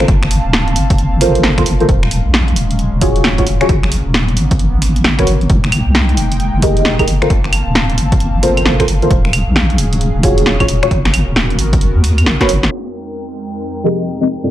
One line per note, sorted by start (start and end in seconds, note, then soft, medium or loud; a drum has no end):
0.00 1.85 A#3 medium
0.00 1.87 C4 medium
0.00 3.65 F5 medium
0.00 1.87 A5 medium
0.00 finger snap medium
0.00 closed hi-hat soft
0.08 0.42 G1 medium
0.08 kick loud
0.08 closed hi-hat medium
0.23 finger snap medium
0.31 open hi-hat loud
0.45 0.77 D1 medium
0.53 snare loud
0.68 closed hi-hat soft
0.76 1.09 G1 medium
0.76 open hi-hat medium
0.90 kick loud
0.90 closed hi-hat medium
0.98 closed hi-hat medium
1.13 1.42 G1 medium
1.21 1.54 F4 loud
1.21 1.54 A4 medium
1.21 1.54 A#4 medium
1.21 1.54 C5 loud
1.21 finger snap soft
1.21 open hi-hat loud
1.35 closed hi-hat medium
1.43 1.64 G1 medium
1.43 snare loud
1.58 1.63 F4 medium
1.58 1.63 A4 medium
1.58 1.63 A#4 medium
1.58 1.63 C5 medium
1.58 finger snap medium
1.58 kick medium
1.58 closed hi-hat medium
1.66 1.86 G1 medium
1.66 open hi-hat medium
1.80 1.86 F4 medium
1.80 1.86 A4 medium
1.80 1.86 A#4 medium
1.80 1.86 C5 loud
1.80 closed hi-hat soft
1.89 2.22 D#1 medium
1.89 5.46 F#3 medium
1.89 3.67 G#3 medium
1.89 5.46 C#4 medium
1.89 kick loud
1.89 closed hi-hat medium
2.03 finger snap medium
2.11 open hi-hat loud
2.26 2.58 A#1 medium
2.34 snare loud
2.48 closed hi-hat soft
2.56 2.90 D#1 medium
2.56 open hi-hat medium
2.71 closed hi-hat medium
2.79 closed hi-hat medium
2.93 3.22 D#1 medium
3.01 3.35 F4 loud
3.01 3.35 F#4 medium
3.01 3.35 G#4 medium
3.01 3.35 C#5 loud
3.01 kick loud
3.01 open hi-hat loud
3.16 closed hi-hat medium
3.24 3.44 D#1 medium
3.24 snare loud
3.38 3.44 F4 medium
3.38 3.44 F#4 medium
3.38 3.44 G#4 medium
3.38 3.44 C#5 loud
3.38 kick medium
3.38 closed hi-hat soft
3.47 3.67 D#1 medium
3.47 open hi-hat medium
3.61 3.66 F4 medium
3.61 3.66 F#4 medium
3.61 3.66 G#4 medium
3.61 3.66 C#5 loud
3.61 finger snap medium
3.61 closed hi-hat soft
3.69 4.03 G#1 loud
3.69 9.07 A#3 medium
3.69 5.48 B3 medium
3.69 kick loud
3.69 closed hi-hat medium
3.83 finger snap medium
3.92 open hi-hat medium
4.06 4.38 D#1 medium
4.14 snare loud
4.29 closed hi-hat soft
4.37 4.70 G#1 medium
4.37 open hi-hat medium
4.51 kick loud
4.51 closed hi-hat medium
4.59 closed hi-hat medium
4.74 5.02 G#1 medium
4.82 finger snap soft
4.82 open hi-hat loud
4.96 closed hi-hat medium
5.04 5.25 G#1 medium
5.04 snare loud
5.19 5.28 F#4 medium
5.19 5.28 A#4 medium
5.19 5.28 B4 medium
5.19 5.28 C#5 loud
5.19 finger snap medium
5.19 kick medium
5.19 closed hi-hat medium
5.27 5.47 G#1 medium
5.27 open hi-hat medium
5.41 closed hi-hat soft
5.50 5.83 F1 loud
5.50 7.06 G#3 medium
5.50 7.06 D#4 medium
5.50 7.06 G5 medium
5.50 kick loud
5.50 closed hi-hat medium
5.64 finger snap medium
5.72 open hi-hat medium
5.72 claves medium
5.87 6.19 C2 medium
5.95 snare loud
6.09 closed hi-hat soft
6.17 6.51 F1 medium
6.17 open hi-hat medium
6.32 closed hi-hat medium
6.40 closed hi-hat medium
6.54 6.83 F1 medium
6.62 6.96 G4 loud
6.62 6.96 G#4 medium
6.62 6.96 A#4 medium
6.62 6.96 D#5 loud
6.62 kick loud
6.62 open hi-hat loud
6.77 closed hi-hat medium
6.85 7.05 F1 medium
6.85 snare loud
6.99 7.05 G4 medium
6.99 7.05 G#4 medium
6.99 7.05 A#4 medium
6.99 7.05 D#5 loud
6.99 kick medium
6.99 closed hi-hat medium
6.99 claves medium
7.08 7.28 G1 medium
7.08 9.09 C4 medium
7.08 10.87 F5 medium
7.08 9.09 A5 medium
7.08 open hi-hat medium
7.22 7.27 F4 medium
7.22 7.27 A4 medium
7.22 7.27 A#4 medium
7.22 7.27 C5 loud
7.22 finger snap medium
7.22 closed hi-hat soft
7.30 7.63 G1 medium
7.30 kick loud
7.30 closed hi-hat medium
7.44 finger snap medium
7.53 open hi-hat loud
7.53 claves medium
7.67 7.99 D1 medium
7.75 snare loud
7.90 closed hi-hat soft
7.98 8.31 G1 medium
7.98 open hi-hat medium
8.12 kick loud
8.12 closed hi-hat medium
8.20 closed hi-hat medium
8.35 8.63 G1 medium
8.43 8.76 F4 loud
8.43 8.76 A4 medium
8.43 8.76 A#4 medium
8.43 8.76 C5 loud
8.43 finger snap soft
8.43 open hi-hat loud
8.57 closed hi-hat medium
8.57 claves medium
8.65 8.85 G1 medium
8.65 snare loud
8.80 8.85 F4 medium
8.80 8.85 A4 medium
8.80 8.85 A#4 medium
8.80 8.85 C5 loud
8.80 finger snap medium
8.80 kick medium
8.80 closed hi-hat medium
8.88 9.08 G1 medium
8.88 open hi-hat medium
9.02 9.08 F4 loud
9.02 9.08 A4 medium
9.02 9.08 A#4 medium
9.02 9.08 C5 loud
9.02 closed hi-hat soft
9.11 9.44 D#1 loud
9.11 10.89 F#3 medium
9.11 12.68 C#4 medium
9.11 10.89 G#4 medium
9.11 kick loud
9.11 closed hi-hat medium
9.25 finger snap medium
9.33 open hi-hat loud
9.33 claves medium
9.47 9.80 A#1 medium
9.56 snare loud
9.70 closed hi-hat soft
9.78 10.12 D#1 medium
9.78 open hi-hat loud
9.93 closed hi-hat medium
10.01 closed hi-hat medium
10.15 10.44 D#1 medium
10.23 10.57 F4 loud
10.23 10.57 F#4 medium
10.23 10.57 G#4 medium
10.23 10.57 C#5 loud
10.23 kick loud
10.23 open hi-hat loud
10.38 closed hi-hat medium
10.46 10.66 D#1 medium
10.46 snare loud
10.60 10.65 F4 medium
10.60 10.65 F#4 medium
10.60 10.65 G#4 medium
10.60 10.65 C#5 loud
10.60 kick medium
10.60 closed hi-hat medium
10.60 claves medium
10.69 10.88 D#1 medium
10.69 open hi-hat medium
10.83 10.88 F4 medium
10.83 10.88 F#4 medium
10.83 10.88 G#4 medium
10.83 10.88 C#5 loud
10.83 finger snap medium
10.83 closed hi-hat soft
10.91 11.24 G#1 loud
10.91 12.70 B3 medium
10.91 12.70 F#4 medium
10.91 12.70 A#4 medium
10.91 kick loud
10.91 closed hi-hat medium
11.05 finger snap medium
11.05 snare medium
11.14 open hi-hat loud
11.14 claves medium
11.28 11.60 D#1 medium
11.36 snare loud
11.50 closed hi-hat soft
11.59 11.92 G#1 medium
11.59 open hi-hat loud
11.73 kick loud
11.73 closed hi-hat medium
11.81 closed hi-hat medium
11.96 12.28 D#2 medium
12.04 finger snap soft
12.04 open hi-hat loud
12.18 closed hi-hat medium
12.18 claves medium
12.26 12.38 G#1 loud
12.26 snare loud
12.41 12.49 F#4 medium
12.41 12.49 A#4 medium
12.41 12.49 B4 medium
12.41 12.49 C#5 loud
12.41 kick medium
12.41 snare medium
12.41 closed hi-hat medium
12.49 12.69 G#1 medium
12.49 open hi-hat loud
12.63 snare loud
12.63 closed hi-hat soft
12.71 14.28 F2 medium
12.71 14.28 G#3 medium
12.71 14.28 C4 medium
12.71 14.28 D#4 medium
12.71 14.28 A#4 medium
12.71 14.28 G5 medium
12.94 open hi-hat loud
13.84 14.18 F3 loud
13.84 14.18 C4 medium
13.84 14.18 G4 medium
13.84 14.18 G#4 medium
13.84 14.18 A#4 medium
13.84 14.18 D#5 loud
13.84 open hi-hat loud
14.21 14.26 F3 medium
14.21 14.26 C4 medium
14.21 14.26 G4 medium
14.21 14.26 G#4 medium
14.21 14.26 A#4 medium
14.21 14.26 D#5 medium
14.29 14.51 G2 medium
14.29 14.51 A#3 medium
14.29 14.51 D4 medium
14.29 14.51 F4 medium
14.29 14.51 C5 medium
14.29 14.51 A5 medium
14.44 14.49 G3 medium
14.44 14.49 C4 medium
14.44 14.49 F4 medium
14.44 14.49 A4 medium
14.44 14.49 A#4 medium
14.44 14.49 D5 loud